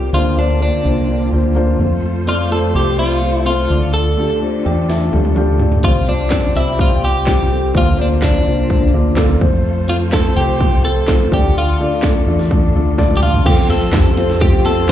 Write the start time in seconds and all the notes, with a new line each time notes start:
Already playing: C3 G3 C4 F4 G4 A4 A#4 C5
0.13 D2 D3 A#3 C4 D4 F4 C5
0.36 A#3 D4 F4 C5
0.59 A#3 D4 F4
0.83 C2 A#3 D4 F4 C5
1.07 A#3 D4 F4 D5
1.32 D2 A#3 D4 F4 C5
1.55 A#3 D4 F4 C5
1.79 F2 F3 A3 C4 F4 A4 C5
2.26 A3 C4 F4 D5
2.50 A3 C4 F4 A4 C5
2.74 C2 A3 C4 F4 G4
2.96 A3 C4 F4 D5
3.21 A3 C4 F4 C5
3.35 E4
3.45 A3 C4 F4 C5
3.69 D2 D3 A3 D4 F4 D5
3.94 A4
4.17 A3 D4 F4 G4
4.41 A3 D4 F4 C5
4.64 E2 A3 D4 F4 D5 G5
4.88 A3 D4 F4 E5 A5, snare
5.12 D2 A3 D4 F4 G4, high tom
5.25 high tom
5.36 A3 D4 F4 G4 F5, mid tom
5.60 A3 D4 F4 D5, floor tom
5.72 floor tom
5.84 C2 C3 G3 C4 F4 G4 C5, kick
6.07 G3 C4 D4 F4 D5
6.30 G3 C4 F4 C5, kick, snare, clap
6.55 C2 G3 C4 E4 F4 D5
6.78 G3 C4 F4 C5, kick
7.02 G3 C4 F4 G4 C5
7.26 G3 C4 F4 G4, kick, snare, clap
7.51 G3 C4 F4 A4
7.73 D2 D3 A#3 D4 F4 C5, kick
7.77 F4
7.97 A#3 D4 F4 C5
8.01 D4
8.22 A#3 D4 F4 C5, kick, snare, clap
8.46 C2 A#3 D4 F4 C5
8.70 A#3 D4 F4 C5, kick
8.93 D2 A#3 D4 F4 D5
9.16 A#3 D4 F4 A4, kick, snare, clap
9.40 F2 F3 A3 C4 F4 A4 C5, kick
9.87 A3 C4 F4 C5
10.12 A3 C4 F4 A4, kick, snare, clap
10.35 C2 A3 C4 F4 G4
10.60 A3 C4 F4 C5, kick
10.83 A3 C4 F4 A4 C5
11.08 A3 C4 F4 C5, kick, snare, clap
11.32 D2 D3 A3 D4 F4 G4 D5, kick
11.58 F4
11.79 A3 D4 F4 D5
12.02 A3 D4 F4 A4, kick, snare, clap
12.26 E2 A3 D4 F4 D5
12.39 snare
12.51 A3 D4 F4 D5, kick
12.74 D2 A3 D4 F4 D5
12.98 A3 D4 F4 D5, kick, snare
13.10 high tom
13.17 G4
13.21 A3 D4 F4 D5, mid tom
13.34 floor tom
13.44 F2 A3 C4 F4 G4 A4, kick, crash, ride, tambourine, impact
13.68 C4 F4 A4, ride, tambourine
13.81 F2, ride
13.92 F2 C4 F4 G4, kick, snare, clap, ride, tambourine
14.16 C4 F4 C5, ride, tambourine
14.30 snare, tambourine
14.40 F2 C4 F4 G4, kick, ride, tambourine
14.65 C4 F4 A4, ride, tambourine
14.87 G2 C4 F4